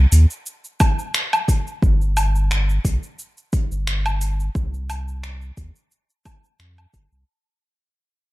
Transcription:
0.12 0.26 D#2 loud
0.12 open hi-hat medium
0.12 cabasa medium
0.30 cabasa soft
0.46 cabasa soft
0.64 cabasa soft
0.80 kick loud
0.80 open hi-hat medium
0.80 cabasa medium
0.80 low woodblock medium
0.99 cabasa soft
1.14 finger snap medium
1.14 cabasa soft
1.33 cabasa soft
1.33 low woodblock medium
1.48 kick medium
1.48 open hi-hat medium
1.48 cabasa medium
1.67 cabasa soft
1.82 2.79 G1 loud
1.82 kick loud
1.82 cabasa soft
2.01 cabasa soft
2.17 open hi-hat medium
2.17 cabasa medium
2.17 low woodblock medium
2.35 cabasa soft
2.51 finger snap medium
2.51 cabasa soft
2.69 cabasa soft
2.85 2.99 B1 medium
2.85 kick medium
2.85 open hi-hat loud
2.85 cabasa medium
3.03 cabasa soft
3.19 cabasa soft
3.37 cabasa soft
3.53 kick loud
3.53 open hi-hat medium
3.53 cabasa medium
3.71 4.49 G1 medium
3.71 cabasa soft
3.87 finger snap loud
3.87 cabasa soft
4.06 cabasa soft
4.06 low woodblock medium
4.21 open hi-hat medium
4.21 cabasa medium
4.40 cabasa soft
4.55 5.52 C2 loud
4.55 kick loud
4.55 cabasa soft
4.74 cabasa soft
4.90 open hi-hat medium
4.90 cabasa medium
4.90 low woodblock medium
5.08 cabasa soft
5.23 finger snap loud
5.23 cabasa soft
5.42 cabasa soft
5.57 5.72 D#2 medium
5.57 kick medium
5.57 open hi-hat medium
5.57 cabasa medium
5.76 cabasa soft
5.91 cabasa soft
6.10 cabasa soft
6.25 kick loud
6.25 open hi-hat loud
6.25 cabasa medium
6.25 low woodblock medium
6.44 cabasa soft
6.59 6.86 F2 loud
6.59 finger snap loud
6.59 cabasa soft
6.78 cabasa soft
6.78 low woodblock medium
6.94 7.08 G1 loud
6.94 kick medium
6.94 open hi-hat loud
6.94 cabasa medium
7.12 7.24 C2 medium
7.12 cabasa soft

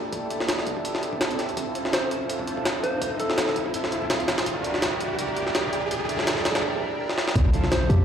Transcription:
0.00 0.11 D4 medium
0.00 0.11 E4 medium
0.00 0.11 G4 medium
0.00 0.11 A4 medium
0.00 riser medium
0.12 0.65 D4 medium
0.12 0.65 E4 medium
0.12 0.65 G4 medium
0.12 0.65 A4 medium
0.12 kick loud
0.12 closed hi-hat medium
0.30 closed hi-hat medium
0.40 snare medium
0.48 snare loud
0.48 closed hi-hat medium
0.59 snare soft
0.67 1.19 D4 medium
0.67 1.20 E4 medium
0.67 1.20 G4 medium
0.67 1.20 A4 medium
0.67 kick loud
0.67 closed hi-hat medium
0.77 kick medium
0.85 closed hi-hat medium
0.95 snare medium
1.03 closed hi-hat medium
1.13 kick medium
1.21 1.28 D4 medium
1.21 1.28 E4 medium
1.21 1.28 G4 medium
1.21 1.28 A4 loud
1.21 snare loud
1.21 closed hi-hat medium
1.31 1.55 D4 loud
1.31 1.55 E4 medium
1.31 1.55 G4 medium
1.31 1.55 A4 loud
1.31 closed hi-hat soft
1.39 snare soft
1.39 closed hi-hat medium
1.49 closed hi-hat soft
1.57 2.09 C4 medium
1.57 2.09 E4 medium
1.57 2.09 F4 medium
1.57 2.09 A4 medium
1.57 kick loud
1.57 closed hi-hat medium
1.75 closed hi-hat medium
1.85 snare soft
1.93 2.10 C5 medium
1.93 snare loud
1.93 closed hi-hat medium
2.11 3.00 C4 medium
2.11 3.00 E4 medium
2.11 3.00 F4 medium
2.11 3.00 A4 medium
2.11 closed hi-hat medium
2.29 closed hi-hat medium
2.39 kick medium
2.47 closed hi-hat medium
2.57 kick medium
2.65 snare loud
2.65 closed hi-hat medium
2.83 3.06 C5 medium
2.83 kick medium
2.83 closed hi-hat medium
3.02 3.54 C4 medium
3.02 3.54 E4 medium
3.02 3.54 F4 medium
3.02 3.54 A4 medium
3.02 kick loud
3.02 closed hi-hat medium
3.20 3.56 A4 medium
3.20 closed hi-hat medium
3.30 snare medium
3.38 snare loud
3.38 closed hi-hat medium
3.48 snare soft
3.56 4.44 C4 medium
3.56 4.44 E4 medium
3.56 4.44 F4 medium
3.56 4.44 A4 medium
3.56 kick loud
3.56 closed hi-hat medium
3.66 kick medium
3.74 closed hi-hat medium
3.84 snare soft
3.92 closed hi-hat medium
4.02 kick medium
4.10 snare loud
4.10 closed hi-hat medium
4.20 closed hi-hat soft
4.28 snare loud
4.28 closed hi-hat medium
4.38 snare loud
4.38 closed hi-hat medium
4.46 4.99 D4 medium
4.46 4.99 E4 medium
4.46 4.99 G4 medium
4.46 4.99 A#4 medium
4.46 kick loud
4.46 closed hi-hat medium
4.64 closed hi-hat medium
4.74 snare soft
4.82 snare loud
4.82 closed hi-hat medium
5.01 5.89 D4 medium
5.01 5.89 E4 medium
5.01 5.89 G4 medium
5.01 5.89 A#4 medium
5.01 closed hi-hat medium
5.19 closed hi-hat medium
5.29 kick medium
5.37 closed hi-hat medium
5.47 snare soft
5.55 snare loud
5.55 closed hi-hat medium
5.73 closed hi-hat medium
5.91 6.43 D4 medium
5.91 6.43 E4 medium
5.91 6.43 G4 medium
5.91 6.43 A#4 medium
5.91 kick loud
5.91 closed hi-hat medium
6.09 closed hi-hat medium
6.19 snare medium
6.27 snare loud
6.27 closed hi-hat medium
6.37 snare soft
6.45 6.98 D4 medium
6.45 6.98 E4 medium
6.45 6.98 G4 medium
6.45 6.98 A#4 medium
6.45 snare loud
6.45 closed hi-hat medium
6.55 snare loud
6.55 closed hi-hat medium
6.99 7.07 D4 loud
6.99 7.07 E4 medium
6.99 7.07 G4 medium
6.99 7.07 A#4 loud
7.09 7.34 D4 loud
7.09 7.34 E4 medium
7.09 7.34 G4 medium
7.09 7.34 A#4 loud
7.09 snare medium
7.18 snare medium
7.28 snare medium
7.35 7.44 D2 loud
7.35 7.88 C4 medium
7.35 7.88 E4 medium
7.35 7.88 F4 medium
7.35 7.88 A4 medium
7.35 kick loud
7.35 closed hi-hat medium
7.35 impact medium
7.54 closed hi-hat medium
7.64 snare soft
7.72 7.88 C5 medium
7.72 snare loud
7.72 closed hi-hat medium
7.89 8.05 F2 medium
7.89 8.05 C4 medium
7.89 8.05 E4 medium
7.89 8.05 F4 medium
7.89 7.96 G4 medium
7.89 8.05 A4 medium
7.89 closed hi-hat medium
8.00 8.05 G4 medium

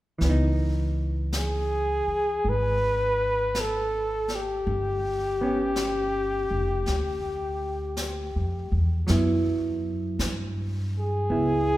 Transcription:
0.18 2.03 C#2 medium
0.18 4.64 E3 soft
0.18 brush sweep soft
0.18 snare soft
0.25 4.67 B3 soft
0.29 4.70 D#4 soft
1.32 brush sweep soft
1.32 snare soft
1.32 hi-hat pedal soft
1.37 2.50 G#4 medium
2.07 muted upright bass stroke soft
2.44 4.62 G#1 medium
2.44 brush sweep soft
2.49 3.62 B4 medium
3.55 brush sweep soft
3.55 snare soft
3.55 hi-hat pedal soft
3.60 4.37 A4 medium
4.28 snare soft
4.35 8.75 G4 medium
4.65 6.47 G1 medium
4.65 brush sweep soft
5.41 9.08 B3 soft
5.41 9.10 C#4 soft
5.76 brush sweep soft
5.76 snare soft
5.76 hi-hat pedal soft
6.51 6.85 F1 soft
6.86 8.31 D2 medium
6.86 brush sweep soft
6.86 snare soft
7.97 brush sweep soft
7.97 snare soft
7.97 hi-hat pedal soft
8.36 8.70 F2 soft
8.72 9.06 E2 medium
9.07 10.16 F#2 medium
9.07 11.77 F#3 soft
9.07 11.29 B3 soft
9.07 11.30 E4 soft
9.07 brush sweep soft
9.07 snare soft
10.19 11.26 G2 medium
10.19 brush sweep soft
10.19 snare soft
10.19 hi-hat pedal soft
10.99 11.77 G#4 medium
11.29 11.77 C#2 medium
11.29 11.77 B3 soft
11.29 11.77 E4 soft
11.29 brush sweep soft

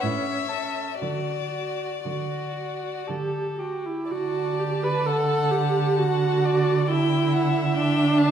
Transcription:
0.01 0.87 A2 medium
0.01 0.49 C#4 soft
0.01 0.51 C#5 medium
0.01 1.00 E5 medium
0.49 1.00 C#4 soft
0.49 0.99 A4 soft
1.00 1.91 D3 medium
1.00 1.92 F#4 soft
1.00 1.51 F#4 soft
1.00 3.05 D5 medium
1.52 2.03 F#4 soft
2.04 2.95 D3 soft
2.04 3.09 F#4 soft
2.04 2.55 F#4 soft
2.55 3.07 F#4 soft
3.08 3.98 D3 soft
3.08 3.57 G4 soft
3.08 3.60 A4 soft
3.59 3.87 F#4 medium
3.59 4.10 G4 soft
3.86 4.12 E4 medium
4.10 8.31 D3 medium
4.10 4.61 F#4 medium
4.10 5.09 D5 soft
4.10 6.86 A5 medium
4.59 4.85 G4 medium
4.83 5.08 B4 medium
5.06 5.52 A4 medium
5.06 6.00 F#5 soft
5.51 6.00 G4 medium
5.98 6.89 F#4 medium
5.98 6.46 F#5 soft
6.45 6.92 D5 medium
6.88 7.76 E4 medium
6.88 8.31 E5 medium
6.88 7.34 G5 medium
7.33 7.75 F#5 medium
7.76 8.31 D4 medium
7.76 8.20 G5 medium
8.18 8.31 A5 medium

